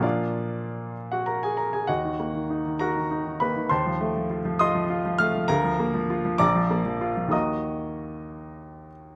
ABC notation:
X:1
M:6/8
L:1/16
Q:3/8=65
K:Ebm
V:1 name="Grand piano"
[F=df]6 z [Gg] [Bb] [Aa] [Bb] [Aa] | [Geg]6 [Bgb]4 [cc']2 | [=c=a=c']6 [ec'e']4 [ff']2 | [Bfb]6 [=db=d']6 |
[ebe']8- [ebe']2 z2 |]
V:2 name="Grand piano" clef=bass
[B,,F,B,=D]12 | E,, E, B, E, E E, G E, E E, B, E, | E,, F, =A, F, F F, F F, F F, A, F, | =D,, F, B, F, F F, B,,, F, B, F, F F, |
[E,,E,B,G]12 |]